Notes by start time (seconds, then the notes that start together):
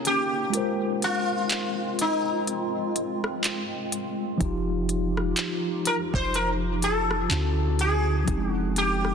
Already playing: A#3 C#4 D#4
0.05 G4, closed hi-hat
0.50 G#3 C4 F4, closed hi-hat
0.55 A#4 C5
1.02 F4, closed hi-hat
1.50 clap, closed hi-hat
1.99 D#4, closed hi-hat
2.47 closed hi-hat
2.96 closed hi-hat
3.24 cross-stick
3.44 clap, closed hi-hat
3.92 closed hi-hat
4.38 F1 F3 D#4 F4 G4, kick, closed hi-hat
4.42 F4 G4
4.89 closed hi-hat
5.17 cross-stick
5.37 clap, closed hi-hat
5.85 A#4, closed hi-hat
6.14 F1 C5, kick
6.34 A#4, closed hi-hat
6.82 A4, closed hi-hat
7.11 cross-stick
7.29 D2 D3 C#4 E4 F#4, clap, closed hi-hat
7.79 G#4, closed hi-hat
8.24 F1 F3 G#3 C4 D#4, kick, closed hi-hat
8.29 D#4 G4
8.38 G#3
8.51 F#4
8.76 G4, closed hi-hat
9.05 cross-stick